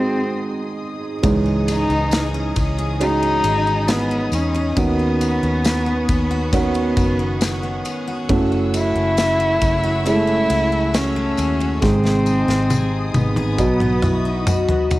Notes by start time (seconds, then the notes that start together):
Already playing: G#3 C4 D#4 F#4 G#4 D#5 C6 D#6
1.23 C#2 G#2 C#3 E3 G#3 C#4 D#4 D#5 C#6, kick, ride, tambourine
1.46 D#4
1.68 D#4 G#4, ride, tambourine
1.89 C#2 D#4
2.11 G#4, snare, ride, tambourine
2.34 C#4
2.56 C#2 D#4, kick, ride, tambourine
2.78 G#4
3.00 C#3 G#3 C#4 D#4 F#4 B5, ride, tambourine
3.23 D#4, ride
3.44 G#1 G#4, ride, tambourine
3.67 D#4
3.88 B3 G#4, snare, ride, tambourine
4.11 C#4
4.32 E2 C#4 D#4, ride, tambourine
4.54 G#4, ride
4.76 D#2 D#3 B3 C#4 D#4 F#4 B4 F#5 C#6, kick, ride, tambourine
4.99 C#4
5.21 F#4, ride, tambourine
5.43 D#2 C#4
5.64 F#4, snare, ride, tambourine
5.86 B3
6.09 D#2 C#4, kick, ride, tambourine
6.31 F#4
6.53 D#3 B3 C#4 D#4 F#4, kick, ride, tambourine
6.74 C#4, ride
6.97 F#1 F#4, kick, ride, tambourine
7.19 C#4
7.41 F#4, snare, ride, tambourine
7.63 B3
7.85 C#4, ride, tambourine
8.08 F#4
8.29 F#1 F#2 C#3 A3 C#4 E4 F#4 C#6 E6, kick, ride
8.52 C#4
8.74 E4 F#4, ride, tambourine
8.95 F#1 C#4
9.17 F#4, snare, ride, tambourine
9.40 A3
9.61 F#1 C#4, kick, ride, tambourine
9.84 F#4
10.06 F#2 G#3 C#4 E4 G#4, ride, tambourine
10.13 A3
10.27 C#4
10.50 C#2 F#4, ride, tambourine
10.72 C#4
10.94 C#4 F#4, snare, ride, tambourine
11.16 A3
11.37 D#2 C#4, ride, tambourine
11.60 F#4, ride
11.81 G#1 G#2 C3 D#3 G#3 C4 D#4 G#4 D#5 C6 D#6, kick, snare, tambourine
12.04 D#4, snare
12.26 G#4, tambourine
12.48 G#1 D#4, snare
12.70 G#4, high tom, tambourine
13.14 G#1 B3 D#4, high tom, tambourine
13.36 G#4, mid tom
13.58 B1 B2 F#3 B3 F#4 D#5 B5, kick, tambourine
13.80 D#4, mid tom
14.02 E4 F#4, mid tom, tambourine
14.25 D#4
14.46 F#4, mid tom, tambourine
14.69 B3, floor tom
14.91 D#4, floor tom, tambourine